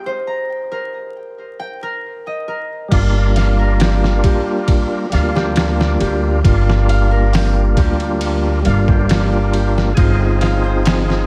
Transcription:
Already playing: G4 D#5 G5
0.06 C5
0.27 A#5
0.72 A#4
1.59 G5
1.83 A#4
2.27 D#5
2.48 A#4
2.88 G1 G3 A#3 F4, kick, crash, ride
2.93 D4 F4
3.36 F5, snare, ride
3.59 A#4
3.80 G5, snare, ride
4.04 snare
4.24 G4, kick, ride
4.68 kick, ride
5.10 D2 G3 A#3 F5, snare, ride
5.14 D4 F4
5.35 G4, snare
5.56 snare, ride
5.79 D5, snare
6.00 D2 G4, ride
6.42 G1 G3 A#3 F4, kick, ride
6.46 D4 F4
6.70 snare
6.89 F5, ride
7.11 A#4
7.33 G5, snare, open hi-hat
7.77 D2 G4, kick, ride
8.00 ride
8.21 ride
8.62 G3 A#3 F5, ride
8.66 G1 D4 F4
8.88 G4, kick
9.09 snare, ride
9.32 D5
9.53 G4, ride
9.78 snare
9.95 G1 C4 F4 G#4, kick, ride
9.99 D#4 F4
10.41 F5, snare, ride
10.64 C5
10.85 G#5, snare, ride
11.10 snare

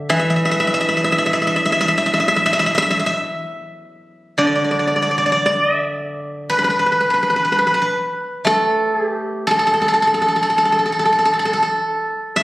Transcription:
Already playing: D3
0.09 E3 E5
0.19 E5
0.30 E5
0.36 E5
0.45 E5
0.51 E5
0.60 E5
0.67 E5
0.74 E5
0.81 E5
0.89 E5
0.97 E5
1.04 E5
1.12 E5
1.18 E5
1.26 E5
1.33 E5
1.42 E5
1.47 E5
1.56 E5
1.65 E5
1.72 E5
1.81 E5
1.88 E5
1.98 E5
2.06 E5
2.14 E5
2.20 E5
2.28 E5
2.36 E5
2.46 E5
2.53 E5
2.59 E5
2.66 E5
2.75 E5
2.82 E5
2.90 E5
2.99 E5
3.06 E5
4.38 D3 D5
4.47 D5
4.55 D5
4.64 D5
4.71 D5
4.79 D5
4.87 D5
4.96 D5
5.02 D5
5.11 D5
5.18 D5
5.26 D5
5.32 D5
5.46 D5
5.64 D#5
5.75 E5
6.50 B4
6.59 B4
6.64 B4
6.70 B4
6.79 B4
6.86 B4
6.92 B4
7.00 B4
7.10 B4
7.23 B4
7.30 B4
7.36 B4
7.45 B4
7.52 B4
7.59 B4
7.67 B4
7.74 B4
7.82 B4
8.45 A3 A4
9.07 G4
9.47 A4
9.59 A4
9.67 A4
9.74 A4
9.82 A4
9.88 A4
9.94 A4
10.02 A4
10.07 A4
10.14 A4
10.22 A4
10.28 A4
10.36 A4
10.43 A4
10.50 A4
10.58 A4
10.65 A4
10.72 A4
10.79 A4
10.86 A4
10.92 A4
10.99 A4
11.05 A4
11.12 A4
11.19 A4
11.25 A4
11.33 A4
11.39 A4
11.45 A4
11.53 A4
11.62 A4
12.36 E5

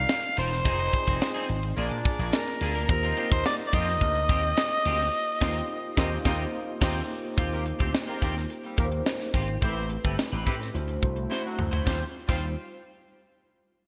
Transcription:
Already playing: C4 D4 D#4 F4 G4 A#4 D5 F5
0.09 snare, ride
0.23 muted clean electric guitar stroke, ride
0.37 E1 D#4 F4 A#4 C5, open hi-hat, ride
0.51 muted clean electric guitar stroke, snare, ride
0.65 F1 C4 D#4 F4 G#4 C5 D#5, kick, hi-hat pedal, ride
0.80 ride
0.93 C4 D#4 F4 G#4 D5, muted clean electric guitar stroke, kick, ride
1.01 D#5
1.07 F1 C4 D#4 G#4, kick, ride
1.21 muted clean electric guitar stroke, snare, ride
1.34 C4 D#4 G#4, ride
1.49 G#1, muted clean electric guitar stroke, ride
1.63 muted clean electric guitar stroke, ride
1.77 A#1 A#3 D4 F4 G#4 A#4 D5, ride
1.91 A#2, muted clean electric guitar stroke, ride
2.05 muted clean electric guitar stroke, kick, ride
2.19 A#1 A#3 D4 G#4, ride
2.33 A#4, muted clean electric guitar stroke, snare, ride
2.47 muted clean electric guitar stroke, snare, ride
2.61 D2 A#3 D4 G#4, open hi-hat, ride
2.75 A#3 D4 A#4, ride
2.89 D#2 A#3 D#4 F4 G4 A#4 C5 D#5, muted clean electric guitar stroke, kick, hi-hat pedal, ride
3.03 C4 F4 A#4, ride
3.16 A#3 C4 D#4 F4 G4 C5, ride
3.31 D#2 C5, muted clean electric guitar stroke, kick, ride
3.45 D5, snare, ride
3.59 muted clean electric guitar stroke, ride
3.67 D5
3.73 F2 C4 F4 G4 D#5, kick, ride
3.86 muted clean electric guitar stroke, snare, ride
4.01 D2, muted clean electric guitar stroke, kick, ride
4.15 muted clean electric guitar stroke, ride
4.29 D#2 C4 F4 G4, kick, ride
4.43 muted clean electric guitar stroke, ride
4.57 snare, ride
4.71 muted clean electric guitar stroke, ride
4.85 D2 C4 F4 G4, open hi-hat, ride
4.99 muted clean electric guitar stroke, snare, ride
5.40 D#2 A#3 C4 D#4 F4 G4 A#4 C5 D#5, kick, snare, crash
5.96 D#2 A#3 C4 D#4 F4 G4 A#4 C5 D#5, kick, snare
6.25 D#2 A#3 C4 D#4 F4 G4 A#4 C5 D#5, kick, snare
6.81 D#2 A#3 C4 D#4 F4 G4 A#4 C5 D#5, kick, snare, crash
7.37 D#2 A#3 C4 D#4 F4 F#4 G4 C5, kick, closed hi-hat
7.45 G4
7.52 A#3 F4 G4 A#4, closed hi-hat
7.65 muted clean electric guitar stroke, closed hi-hat
7.79 D2 C4 F4 G4 C5, kick, closed hi-hat
7.93 muted clean electric guitar stroke, snare
8.07 A#3 C4 F4 G4 A#4, closed hi-hat
8.21 D#2 A#3 C4 F4 G4 A#4, kick, closed hi-hat
8.36 muted clean electric guitar stroke, snare, closed hi-hat
8.49 muted clean electric guitar stroke, closed hi-hat
8.63 G3 A#3 C4 G4, muted clean electric guitar stroke, closed hi-hat
8.77 D#2 A#3 D#4 F4 G4 A#4, kick, closed hi-hat
8.85 C5
8.92 muted clean electric guitar stroke, closed hi-hat
9.06 snare
9.20 muted clean electric guitar stroke, snare, closed hi-hat
9.34 G#1 C4 F4 G4, kick, open hi-hat
9.48 muted clean electric guitar stroke, closed hi-hat
9.61 A1 A3 C4 E4 G4 A4 C5, kick, closed hi-hat
9.69 B4
9.77 closed hi-hat
9.90 muted clean electric guitar stroke, closed hi-hat
10.04 G1 A3 C4 E4 G4 A4 B4, kick, closed hi-hat
10.18 muted clean electric guitar stroke, snare
10.32 A1 C4 G4 B4, closed hi-hat
10.46 A2 G3 C4 E4 G4 B4, kick, closed hi-hat
10.60 muted clean electric guitar stroke, snare, closed hi-hat
10.74 D2 A3 D4 E4 F#4 C5, muted clean electric guitar stroke, closed hi-hat
10.88 muted clean electric guitar stroke, closed hi-hat
11.02 C2 A3 D4 E4 F#4 C5, kick, closed hi-hat
11.16 muted clean electric guitar stroke, closed hi-hat
11.30 E4 F#4 C5, snare
11.44 F#3 A3 C4 F#4, muted clean electric guitar stroke
11.58 D2, muted clean electric guitar stroke, mid tom
11.71 E4 F#4 C5, floor tom
11.86 D#2 G3 C4 D#4 F4 G4 C5, kick, snare
12.28 D#2 G3 C4 D#4 F4 G4 C5, kick, crash

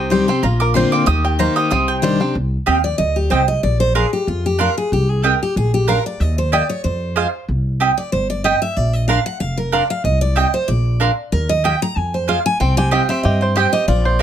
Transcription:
Already playing: C2 C3 C4 G4 D#6
0.10 D#3 G3 C4 G4 C5
0.28 C4 G4 C6
0.43 A#1 A#2 F4 A#5
0.60 A#4 D6
0.74 D3 A#3 C4 F4 C5 C6
0.92 C4 D6
1.06 D#2 D#3 G4 D#6
1.25 G4 G5
1.39 D#3 A#3 D#4 G4 C5 A#5
1.56 G4 D#6
1.71 C2 C3 C4 D#6
1.88 G5
2.02 D#3 G3 D4 G4 C5
2.20 C4 D4 G4
2.35 C2
2.66 D#2 C4 G4 D#5 F5 G5
2.84 D5
2.98 D2 D#5
3.16 G4
3.30 C2 C4 G4 C5 D#5 G5
3.48 D#5
3.63 A#1 D5
3.80 C5
3.95 D4 G#4 A#4 F5 C6
4.13 G4
4.27 F2 F4
4.46 G4
4.59 D4 A#4 F5 C6
4.78 G#4
4.92 C2 G4
5.10 G#4
5.23 C4 G4 A#4 D#5 G5
5.43 G4
5.56 A#1 G#4
5.74 G4
5.87 D4 A#4 F5 C6
6.06 D5
6.20 D#2 D#5
6.38 C5
6.52 A#3 G4 D5 D#5 G5
6.69 C#5
6.84 F2 C5
7.16 G#3 F4 C5 F5
7.48 C2
7.80 C4 G4 D#5 G5
7.98 D5
8.12 G1 C5
8.30 D5
8.44 C4 G4 D#5 G5
8.62 E5
8.77 A#1 D5
8.93 D#5
9.08 D4 A#4 F5 C6
9.26 F#5
9.40 F1 F5
9.57 A#4
9.72 D4 A#4 D5 F5 C6
9.90 F5
10.04 C2 D#5
10.21 D5
10.36 C4 G4 D#5 G5
10.54 C5
10.68 A#1 D5
11.00 D4 A#4 F5 C6
11.32 D#2 A#4
11.49 D#5
11.64 A#3 G4 D#5 G5
11.82 A#5
11.96 F2 G#5
12.14 C5
12.28 G#3 F4 C5 F5
12.46 G#5
12.60 C2 C4 G5
12.77 G4 G#5
12.91 C4 G4 D#5 F5 G5
13.09 C4 E5
13.23 G2 G4 D#5
13.41 G4 C5
13.56 C4 G4 C5 D#5 G5
13.73 G4 D#5
13.88 A#1 F4 D5
14.05 C5
14.19 D4

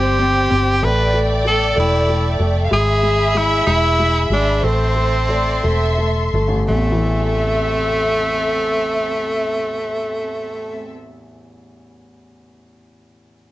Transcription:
Already playing: G1 C4 G4 C5 D5 G5
0.19 C4
0.50 G1 C4
0.83 A1 A3 A4 B4 D5 E5
1.14 A3
1.45 A3 A4
1.76 E1 A3 E4
2.08 A3
2.40 F1 A3
2.65 F5
2.70 G#1 G#3 G#4 E5 B5
3.03 G#3
3.34 G#3 E4
3.67 E1 G#3 E4
3.99 G#3
4.30 G#1 G#3 D4
4.61 A1 A3 C4 A4 C5 C6
4.95 A3
5.29 A3 D5
5.64 E1 A3 E5
5.98 A3
6.33 G1 A3
6.48 A1
6.68 A1 E2 A3 C4 A4 E5
6.92 E3

